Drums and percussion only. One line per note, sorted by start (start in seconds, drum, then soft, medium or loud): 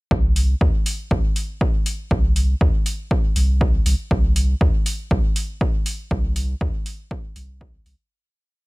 0.11 kick loud
0.36 open hi-hat medium
0.61 kick loud
0.86 open hi-hat medium
1.11 kick loud
1.36 open hi-hat medium
1.61 kick loud
1.86 open hi-hat medium
2.11 kick loud
2.36 open hi-hat medium
2.61 kick loud
2.86 open hi-hat medium
3.11 kick loud
3.36 open hi-hat medium
3.61 kick loud
3.86 open hi-hat medium
4.11 kick loud
4.36 open hi-hat medium
4.61 kick loud
4.86 open hi-hat medium
5.11 kick loud
5.36 open hi-hat medium
5.61 kick loud
5.86 open hi-hat medium
6.11 kick loud
6.36 open hi-hat medium
6.61 kick loud
6.86 open hi-hat medium
7.11 kick loud
7.36 open hi-hat medium
7.61 kick loud
7.86 open hi-hat medium